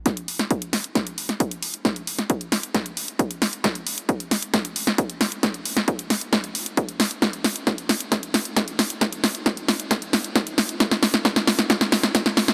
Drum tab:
HH |xxoxxxoxxxoxxxox|xxoxxxoxxxoxxxox|xxoxxxoxxxoxxxox|xxoxxxoxxxoxxxox|
SD |o--o--o-o--o----|o--o--o-o-----o-|o-----o-o--o--o-|o--o--o-o-----o-|
BD |o---o---o---o---|o---o---o---o---|o---o---o---o---|o---o---o---o---|

HH |xxoxxxoxxxoxxxox|xxoxxxoxxxoxxxox|xxoxxxoxxxoxxxox|
SD |o-o-o-o-o-o-o-o-|o-o-o-o-o-o-o-o-|oooooooooooooooo|
BD |o---o---o---o---|o---o---o---o---|o---o---o---o---|